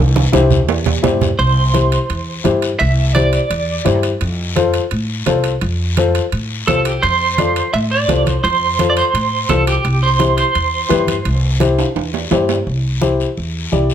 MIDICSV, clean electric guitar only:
0, 0, Header, 1, 2, 480
1, 0, Start_track
1, 0, Key_signature, 0, "major"
1, 0, Tempo, 352526
1, 1894, Time_signature, 4, 2, 24, 8
1, 18983, End_track
2, 0, Start_track
2, 0, Title_t, "Clean electric guitar"
2, 0, Program_c, 0, 27
2, 1889, Note_on_c, 0, 72, 73
2, 3796, Note_off_c, 0, 72, 0
2, 3801, Note_on_c, 0, 76, 89
2, 4254, Note_off_c, 0, 76, 0
2, 4286, Note_on_c, 0, 74, 81
2, 5436, Note_off_c, 0, 74, 0
2, 9088, Note_on_c, 0, 69, 74
2, 9337, Note_off_c, 0, 69, 0
2, 9337, Note_on_c, 0, 67, 77
2, 9565, Note_on_c, 0, 72, 92
2, 9583, Note_off_c, 0, 67, 0
2, 10527, Note_off_c, 0, 72, 0
2, 10532, Note_on_c, 0, 76, 99
2, 10600, Note_off_c, 0, 76, 0
2, 10775, Note_on_c, 0, 74, 90
2, 11445, Note_off_c, 0, 74, 0
2, 11487, Note_on_c, 0, 72, 85
2, 12071, Note_off_c, 0, 72, 0
2, 12113, Note_on_c, 0, 74, 64
2, 12212, Note_off_c, 0, 74, 0
2, 12220, Note_on_c, 0, 72, 84
2, 12929, Note_on_c, 0, 69, 78
2, 12958, Note_off_c, 0, 72, 0
2, 13167, Note_off_c, 0, 69, 0
2, 13172, Note_on_c, 0, 67, 83
2, 13654, Note_on_c, 0, 72, 85
2, 13667, Note_off_c, 0, 67, 0
2, 14100, Note_off_c, 0, 72, 0
2, 14123, Note_on_c, 0, 72, 74
2, 16712, Note_off_c, 0, 72, 0
2, 18983, End_track
0, 0, End_of_file